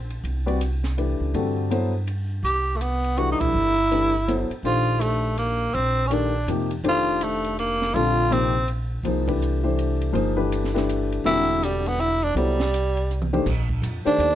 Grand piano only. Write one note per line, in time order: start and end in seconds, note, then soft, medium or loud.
0.46 0.59 G3 medium
0.46 0.59 C4 medium
0.46 0.59 F#4 medium
0.46 0.59 B4 medium
0.46 0.59 D5 medium
0.97 1.52 E3 soft
0.97 1.53 A3 soft
0.97 1.53 D4 soft
0.97 1.53 G4 soft
0.97 1.53 B4 medium
1.35 1.70 D3 medium
1.35 1.70 G3 medium
1.35 1.70 C4 soft
1.35 1.70 F#4 soft
1.35 1.70 A4 medium
1.71 1.91 F#3 medium
1.71 1.92 B3 medium
1.71 1.92 E4 medium
1.71 1.92 A4 medium
1.71 1.92 C5 medium
3.17 3.73 E3 medium
3.17 3.73 A3 soft
3.17 3.73 D4 soft
3.17 3.73 G4 soft
3.17 3.73 B4 medium
3.91 4.12 E3 soft
3.91 4.12 A3 soft
3.91 4.12 D4 soft
3.91 4.12 G4 soft
3.91 4.12 B4 medium
4.28 4.48 F#3 medium
4.28 4.49 B3 medium
4.28 4.49 E4 medium
4.28 4.49 A4 medium
4.28 4.49 C5 medium
4.64 5.66 D#3 medium
4.64 5.66 D4 medium
4.64 5.66 G4 medium
4.64 5.66 A4 soft
4.64 5.66 C5 medium
6.10 6.31 D#3 medium
6.10 6.31 A3 soft
6.10 6.32 D4 soft
6.10 6.32 G4 soft
6.10 6.32 A#4 medium
6.48 6.69 C3 medium
6.48 6.69 F3 soft
6.48 6.69 A#3 medium
6.48 6.69 D#4 medium
6.48 6.69 G4 medium
6.84 7.86 D#3 medium
6.84 7.86 D4 medium
6.84 7.86 G4 medium
6.84 7.86 A4 medium
6.84 7.86 C5 medium
7.95 8.30 D3 medium
7.95 8.30 G3 medium
7.95 8.30 C4 medium
7.95 8.30 F4 medium
7.95 8.30 A4 medium
8.30 8.52 C3 medium
8.30 8.52 F3 medium
8.30 8.52 A#3 medium
8.30 8.52 D#4 medium
8.30 8.52 G4 medium
9.04 9.25 F3 medium
9.04 9.26 A#3 soft
9.04 9.26 D#4 soft
9.04 9.26 G#4 soft
9.04 9.26 C5 medium
9.27 9.60 E3 medium
9.27 9.60 A3 medium
9.27 9.60 D4 soft
9.27 9.60 G4 soft
9.27 9.60 B4 medium
9.63 10.11 E3 medium
9.63 10.12 A3 medium
9.63 10.12 D4 medium
9.63 10.12 G4 medium
9.63 10.12 C5 medium
10.13 10.34 F3 medium
10.13 10.35 A#3 medium
10.13 10.35 D#4 medium
10.13 10.35 G#4 medium
10.13 10.35 C5 medium
10.37 10.69 E3 medium
10.37 10.69 A3 medium
10.37 10.69 D4 medium
10.37 10.69 G4 medium
10.37 10.69 B4 medium
10.74 11.22 E3 medium
10.74 11.22 A3 medium
10.74 11.22 D4 medium
10.74 11.22 G4 medium
10.74 11.22 B4 medium
11.25 12.27 D3 medium
11.25 12.27 G3 medium
11.25 12.27 C4 medium
11.25 12.27 F#4 medium
11.25 12.27 A4 medium
12.36 12.56 F#3 medium
12.36 12.56 B3 soft
12.36 12.56 E4 soft
12.36 12.56 A4 soft
12.36 12.57 C5 medium
13.33 13.44 D#3 medium
13.33 13.45 A3 medium
13.33 13.44 D4 medium
13.33 13.44 G4 medium
13.33 13.45 C5 medium
14.05 14.35 D#3 medium
14.05 14.35 A3 medium
14.05 14.35 D4 medium
14.05 14.35 G4 medium
14.05 14.35 C5 medium